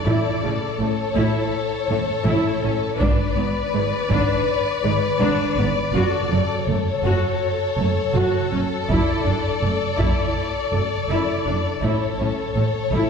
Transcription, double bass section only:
0.07 0.15 A1 medium
0.43 0.51 A1 soft
0.79 0.87 A1 soft
1.16 1.24 A1 medium
1.90 1.98 A1 soft
2.27 2.35 A1 medium
2.64 2.72 A1 soft
3.01 3.09 G#1 medium
3.38 3.46 G#1 soft
3.74 3.82 G#1 soft
4.11 4.19 G#1 medium
4.84 4.92 G#1 soft
5.20 5.28 G#1 medium
5.57 5.65 G#1 soft
5.94 6.02 F#1 medium
6.31 6.39 F#1 soft
6.68 6.76 F#1 soft
7.04 7.12 F#1 medium
7.78 7.86 F#1 soft
8.15 8.23 F#1 medium
8.53 8.61 F#1 soft
8.90 8.98 F#1 medium
9.26 9.34 F#1 soft
9.62 9.70 F#1 soft
10.00 10.08 F#1 soft
10.73 10.81 F#1 soft
11.10 11.18 F#1 soft
11.47 11.55 F#1 soft
11.82 11.90 A1 soft
12.20 12.28 A1 soft
12.55 12.63 A1 soft
12.92 13.00 A1 soft

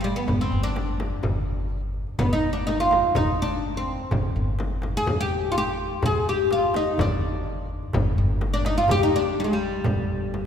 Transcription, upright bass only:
0.00 0.11 G1 medium
0.28 0.48 G1 medium
0.52 1.12 G1 medium
1.23 2.03 G1 medium
2.20 2.99 G1 medium
3.16 3.95 G1 medium
4.11 4.31 G1 medium
4.36 4.95 G1 medium
5.07 5.87 G1 medium
6.03 6.83 G1 medium
6.99 7.78 G1 loud
7.95 8.14 G1 loud
8.18 8.78 G1 loud
8.90 9.69 G1 medium
9.86 10.46 G1 medium

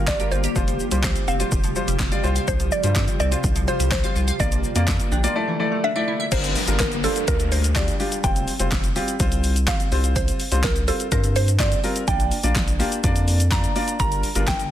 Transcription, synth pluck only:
0.08 0.32 D5 loud
0.31 1.00 C5 medium
1.04 1.29 C5 medium
1.28 1.73 F5 medium
2.48 2.70 C5 loud
2.72 3.19 D5 loud
3.20 3.65 D5 loud
3.68 3.90 C5 medium
3.92 4.37 C5 medium
4.40 4.85 D5 loud
5.84 6.33 E5 medium
6.32 6.81 C5 loud
6.80 7.02 A#4 medium
7.04 7.29 A4 medium
7.28 7.53 A#4 loud
7.52 7.77 C5 medium
7.76 8.25 D5 medium
8.24 9.72 G5 loud
9.68 10.17 F5 loud
10.16 10.65 C5 loud
10.64 10.75 A#4 medium
10.88 11.13 A4 medium
11.12 11.37 A#4 loud
11.36 11.61 C5 medium
11.60 12.09 D5 loud
12.08 13.56 G5 loud
13.52 13.96 A#5 loud
14.00 14.49 A#5 loud
14.48 14.59 G5 loud

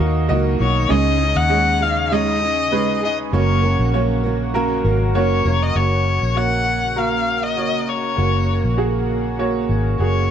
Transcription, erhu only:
0.60 0.92 C#5 medium
0.90 1.38 D#5 loud
1.36 1.83 F#5 loud
1.82 2.14 F5 medium
2.12 3.03 D#5 medium
3.04 3.18 D#5 medium
3.34 3.90 C#5 medium
5.16 5.64 C#5 medium
5.62 5.78 D#5 medium
5.76 6.38 C#5 medium
6.37 6.99 F#5 medium
6.98 7.45 F5 medium
7.43 7.90 D#5 medium
7.88 8.79 C#5 medium
10.00 10.31 C#5 medium

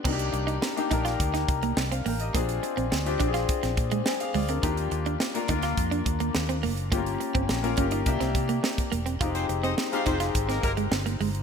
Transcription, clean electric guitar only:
0.04 0.13 C4 medium
0.33 muted clean electric guitar stroke soft
0.47 0.55 D#4 medium
0.62 muted clean electric guitar stroke soft
0.91 0.99 D#4 medium
1.05 1.13 F4 medium
1.34 1.42 D#4 medium
1.49 muted clean electric guitar stroke soft
1.63 1.71 A#3 medium
1.77 muted clean electric guitar stroke soft
1.92 1.99 C4 medium
2.06 2.14 A#3 medium
2.35 2.42 A#3 medium
2.63 muted clean electric guitar stroke soft
2.77 2.85 C4 medium
2.92 muted clean electric guitar stroke soft
3.20 3.28 D4 medium
3.34 3.42 F4 medium
3.63 3.71 C4 medium
3.77 muted clean electric guitar stroke soft
3.92 4.00 G#3 medium
4.06 muted clean electric guitar stroke soft
4.34 4.42 G#3 medium
4.49 4.57 C4 medium
4.63 4.71 D#4 medium
4.92 muted clean electric guitar stroke medium
5.06 5.14 D4 medium
5.21 muted clean electric guitar stroke soft
5.49 5.57 D#4 medium
5.63 5.71 F4 medium
5.91 5.99 D4 medium
6.06 muted clean electric guitar stroke soft
6.20 6.28 A#3 medium
6.35 muted clean electric guitar stroke medium
6.49 6.57 C4 medium
6.63 6.71 A#3 medium
6.92 7.00 A#3 medium
7.20 muted clean electric guitar stroke soft
7.35 7.43 C4 medium
7.49 muted clean electric guitar stroke soft
7.78 7.85 C#4 medium
7.92 8.00 D#4 medium
8.20 8.28 C4 medium
8.35 muted clean electric guitar stroke soft
8.49 8.57 A#3 medium
8.63 muted clean electric guitar stroke soft
8.92 9.00 A#3 medium
9.06 9.14 C4 medium
9.21 9.29 F4 medium
9.49 muted clean electric guitar stroke soft
9.63 9.71 C4 medium
9.78 muted clean electric guitar stroke soft
10.06 10.14 D#4 medium
10.20 10.28 F4 medium
10.49 10.57 C4 medium
10.63 muted clean electric guitar stroke soft
10.77 10.85 G#3 medium
10.91 muted clean electric guitar stroke soft
11.06 11.14 A#3 medium
11.21 11.28 G#3 medium

